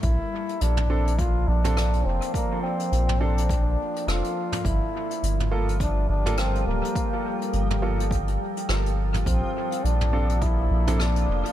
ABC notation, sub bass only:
X:1
M:4/4
L:1/8
Q:"Swing 16ths" 1/4=104
K:Bblyd
V:1 name="Sub bass" clef=bass
B,,, z B,,,3 B,,,2 F,,, | z2 B,,,3 z F,,, z | G,,, z G,,,3 G,,,2 D,,, | z2 G,,,3 z G,,,2 |
B,,, z B,,,3 B,,,2 F,,, |]